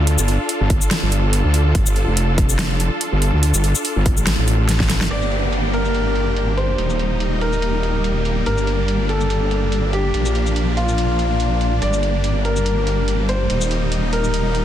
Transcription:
Already playing: wobble bass D2, supersaw synth D4 F4 A4
0.07 closed hi-hat
0.19 wobble bass G1, shaker
0.28 closed hi-hat
0.49 closed hi-hat
0.60 wobble bass G1
0.70 kick, closed hi-hat
0.81 shaker
0.91 snare, closed hi-hat
1.03 wobble bass G1
1.12 closed hi-hat
1.33 closed hi-hat
1.44 wobble bass D2
1.54 closed hi-hat
1.75 wobble bass G1, kick, closed hi-hat
1.86 wobble bass G1, shaker
1.96 closed hi-hat
2.07 wobble bass F1
2.17 closed hi-hat
2.38 kick, closed hi-hat
2.49 shaker
2.59 snare, closed hi-hat
2.80 closed hi-hat
3.01 closed hi-hat
3.12 wobble bass G1
3.22 closed hi-hat
3.33 wobble bass D2
3.43 closed hi-hat
3.54 wobble bass G1, shaker
3.64 closed hi-hat
3.75 shaker
3.85 closed hi-hat
3.96 wobble bass G1
4.06 kick, closed hi-hat
4.17 wobble bass A1, shaker
4.27 snare, closed hi-hat
4.38 wobble bass A1
4.48 closed hi-hat
4.69 snare, closed hi-hat
4.80 kick, snare
4.90 snare, closed hi-hat
5.01 wobble bass G1, snare
5.11 wobble bass G1, supersaw synth A#3 D4 G4, grand piano D5, closed hi-hat, crash, downlifter
5.22 shaker
5.32 closed hi-hat
5.53 closed hi-hat
5.74 grand piano A#4, closed hi-hat
5.85 shaker
5.95 closed hi-hat
6.15 closed hi-hat
6.36 closed hi-hat
6.57 grand piano C5, closed hi-hat
6.78 wobble bass D#1, supersaw synth G3 A#3 D#4, closed hi-hat
6.90 shaker
6.99 closed hi-hat
7.20 closed hi-hat
7.41 grand piano A#4, closed hi-hat
7.53 shaker
7.62 closed hi-hat
7.83 closed hi-hat
8.04 closed hi-hat
8.25 closed hi-hat
8.46 wobble bass G1, supersaw synth D4, grand piano A#4, closed hi-hat
8.58 shaker
8.67 closed hi-hat
8.88 closed hi-hat
9.09 grand piano A4, closed hi-hat
9.21 shaker
9.30 closed hi-hat
9.51 closed hi-hat
9.72 closed hi-hat
9.93 grand piano G4, closed hi-hat
10.14 wobble bass A#1, supersaw synth F3 A#3, closed hi-hat
10.26 shaker
10.35 closed hi-hat
10.46 shaker
10.56 closed hi-hat
10.77 grand piano F4, closed hi-hat
10.88 shaker
10.98 closed hi-hat
11.19 closed hi-hat
11.40 closed hi-hat
11.61 closed hi-hat
11.82 wobble bass G1, supersaw synth G3 A#3, grand piano D5, closed hi-hat
11.93 shaker
12.03 closed hi-hat
12.24 closed hi-hat
12.45 grand piano A#4, closed hi-hat
12.56 shaker
12.66 closed hi-hat
12.87 closed hi-hat
13.08 closed hi-hat
13.29 grand piano C5, closed hi-hat
13.50 wobble bass D#1, supersaw synth D#4, closed hi-hat
13.61 shaker
13.71 closed hi-hat
13.92 closed hi-hat
14.13 grand piano A#4, closed hi-hat
14.24 shaker
14.34 closed hi-hat
14.55 closed hi-hat

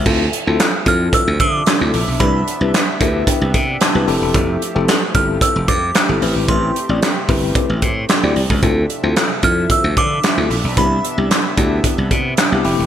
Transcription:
0.06 slap bass D2, analog synth pad C3 F3 D4 E5, tine electric piano C4 E4 F4 A4, kick, crash
0.33 closed hi-hat
0.47 slap bass D2, tine electric piano C4 E4 F4 A4
0.60 snare, clap, closed hi-hat
0.86 slap bass F2, tine electric piano C4 E4 F4 A4, synth bell F6, kick, closed hi-hat
1.13 synth bell E6, kick, closed hi-hat
1.28 slap bass D2
1.40 slap bass D3, synth bell D6, kick, closed hi-hat
1.66 snare, clap, closed hi-hat
1.81 slap bass D2, tine electric piano C4 E4 F4 A4
1.94 slap bass A#1, open hi-hat
2.08 slap bass B1
2.20 slap bass C2, analog synth pad B3, tine electric piano D4 E4 G4 B4, synth bell B5, kick, closed hi-hat
2.47 closed hi-hat
2.61 slap bass C2, tine electric piano D4 E4 G4 B4
2.74 snare, clap, closed hi-hat
3.01 slap bass D2, tine electric piano D4 E4 G4 A#4 E5, kick, closed hi-hat
3.08 tine electric piano B4
3.27 tine electric piano G5, kick, closed hi-hat
3.41 slap bass C2
3.54 slap bass C3, kick, closed hi-hat
3.81 tine electric piano A5, snare, clap, closed hi-hat
3.95 slap bass C2, tine electric piano D4 E4 G4 B4
4.07 slap bass F1, analog synth pad F3 A3 G4, tine electric piano C4 E4 G4 A4, open hi-hat
4.21 slap bass E1
4.34 slap bass F1, kick, closed hi-hat
4.62 closed hi-hat
4.75 slap bass F1, tine electric piano C4 E4 G4 A4
4.88 snare, clap, closed hi-hat
5.14 slap bass G1, tine electric piano C4 E4 G4 A4, synth bell F6, kick, closed hi-hat
5.41 synth bell E6, kick, closed hi-hat
5.56 slap bass F1
5.68 slap bass F2, synth bell D6, kick, closed hi-hat
5.95 snare, clap, closed hi-hat
6.09 slap bass G1, tine electric piano C4 E4 G4 A4
6.22 slap bass A1, analog synth pad C3 C4, tine electric piano C4 E4 G4 B4, open hi-hat
6.36 slap bass G#1
6.48 slap bass A1, synth bell C6, kick, closed hi-hat
6.76 closed hi-hat
6.89 slap bass A1, tine electric piano C4 E4 G4 D5
7.02 snare, clap, closed hi-hat
7.29 slap bass G1, tine electric piano C4 E4 G4 B4, kick, open hi-hat
7.55 kick, closed hi-hat
7.70 slap bass A1
7.82 slap bass A2, kick, closed hi-hat
8.09 snare, clap, closed hi-hat
8.23 slap bass D2, tine electric piano C4 E4 G4 D5
8.36 slap bass C2, open hi-hat
8.50 slap bass C#2, kick
8.63 slap bass D2, analog synth pad F3 D4 E5, tine electric piano C4 E4 F4 A4, kick, closed hi-hat
8.90 closed hi-hat
9.03 slap bass D2, tine electric piano C4 E4 F4 A4
9.16 snare, clap, closed hi-hat
9.43 slap bass F2, tine electric piano C4 E4 F4 A4, synth bell F6, kick, closed hi-hat
9.70 synth bell E6, kick, closed hi-hat
9.84 slap bass D2
9.97 slap bass D3, synth bell D6, kick, closed hi-hat
10.23 snare, clap, closed hi-hat
10.37 slap bass D2, tine electric piano C4 E4 F4 A4
10.50 slap bass A#1, open hi-hat
10.64 slap bass B1
10.77 slap bass C2, tine electric piano B3 D4 E4 G4, analog synth pad B3, synth bell B5, kick, closed hi-hat
11.04 closed hi-hat
11.18 slap bass C2, tine electric piano B3 D4 E4 G4
11.31 snare, clap, closed hi-hat
11.57 slap bass D2, tine electric piano B3 D4 E4 G4, kick, closed hi-hat
11.84 kick, closed hi-hat
11.98 slap bass C2
12.11 slap bass C3, kick, closed hi-hat
12.37 snare, clap, closed hi-hat
12.52 slap bass C2, tine electric piano B3 D4 E4 G4
12.64 slap bass F1, analog synth pad F3 A3 G4, tine electric piano A3 C4 E4 G4, open hi-hat
12.79 slap bass E1

